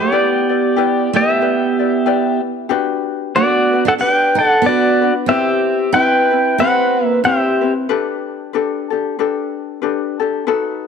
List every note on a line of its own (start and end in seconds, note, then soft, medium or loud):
0.00 1.09 B3 medium
0.00 0.12 F#4 medium
0.00 1.10 G4 medium
0.00 0.12 B4 medium
0.00 1.16 D5 medium
0.00 0.11 D#5 medium
0.00 0.12 F#5 medium
0.12 0.49 E4 medium
0.12 0.49 G4 medium
0.12 0.49 B4 medium
0.12 0.48 D5 medium
0.49 0.76 E4 soft
0.49 0.76 B4 soft
0.49 0.76 D5 medium
0.76 1.14 E4 medium
0.76 1.14 G4 medium
0.76 1.14 B4 medium
0.76 1.13 D5 medium
1.13 2.39 B3 medium
1.13 1.40 E4 soft
1.13 2.41 G4 medium
1.13 1.40 B4 soft
1.13 1.41 D5 soft
1.13 2.41 E5 medium
1.41 1.79 E4 medium
1.41 1.78 G4 medium
1.41 1.79 B4 medium
1.41 1.78 D5 medium
1.79 2.05 E4 soft
1.79 2.05 B4 soft
1.79 2.06 D5 soft
2.06 2.69 E4 medium
2.06 2.69 G4 medium
2.06 2.70 B4 medium
2.06 2.70 D5 medium
2.69 3.34 D4 medium
2.69 3.35 F#4 medium
2.69 3.36 G4 medium
2.69 3.36 B4 loud
3.35 3.83 B3 medium
3.35 3.73 D4 medium
3.35 3.73 F#4 medium
3.35 3.83 F#4 medium
3.35 3.72 B4 medium
3.35 3.83 D5 medium
3.73 3.99 D4 soft
3.73 3.99 F#4 soft
3.73 3.99 B4 medium
3.85 3.90 D4 medium
3.85 3.93 A4 medium
3.85 3.93 F#5 medium
3.98 4.34 D4 medium
3.98 4.62 D4 medium
3.98 4.64 G4 medium
3.98 4.65 B4 medium
3.98 4.36 B4 medium
3.98 4.38 G5 loud
4.35 4.61 D4 medium
4.35 4.66 F#5 medium
4.40 4.64 A4 medium
4.62 5.11 B3 medium
4.62 5.02 D4 medium
4.62 5.02 F#4 medium
4.62 5.01 B4 medium
4.66 5.14 F#4 medium
4.66 5.13 D5 medium
5.02 5.28 D4 soft
5.02 5.29 F#4 medium
5.02 5.28 B4 medium
5.26 5.88 C4 medium
5.26 5.93 C4 medium
5.26 5.94 E4 medium
5.26 5.92 G4 medium
5.26 5.95 B4 medium
5.26 5.96 E5 loud
5.31 5.91 G4 medium
5.93 6.32 C4 medium
5.93 6.54 E4 medium
5.93 6.31 E4 medium
5.93 6.31 G4 medium
5.93 6.30 B4 medium
5.93 6.55 B4 medium
5.93 6.61 G5 loud
6.31 6.59 C4 soft
6.31 6.59 E4 soft
6.31 6.58 B4 medium
6.58 7.04 C4 medium
6.58 7.23 C4 medium
6.58 7.24 E4 medium
6.58 7.24 G4 medium
6.58 7.26 B4 medium
6.58 7.21 B4 medium
6.58 7.05 F#5 medium
7.04 7.19 A#3 medium
7.04 7.20 E5 medium
7.24 7.71 C4 medium
7.24 7.62 C4 medium
7.24 7.61 E4 medium
7.24 7.61 G4 medium
7.24 7.73 G4 medium
7.24 7.60 B4 medium
7.24 7.72 E5 medium
7.61 7.89 C4 soft
7.61 7.89 E4 soft
7.61 7.88 B4 medium
7.89 8.53 D4 medium
7.89 8.53 G4 medium
7.89 8.55 A4 medium
7.89 8.53 B4 medium
8.53 8.91 D4 medium
8.53 8.91 G4 medium
8.53 8.89 A4 medium
8.53 8.91 B4 medium
8.90 9.18 D4 soft
8.90 9.18 G4 medium
8.90 9.17 A4 medium
9.19 9.82 D4 medium
9.19 9.81 G4 medium
9.19 9.83 A4 medium
9.19 9.81 B4 medium
9.82 10.20 D4 medium
9.82 10.19 G4 medium
9.82 10.18 A4 medium
9.82 10.19 B4 medium
10.20 10.47 D4 medium
10.20 10.46 G4 medium
10.20 10.46 A4 medium
10.47 10.87 D#4 medium
10.47 10.87 F#4 medium
10.47 10.87 A4 medium
10.47 10.87 B4 medium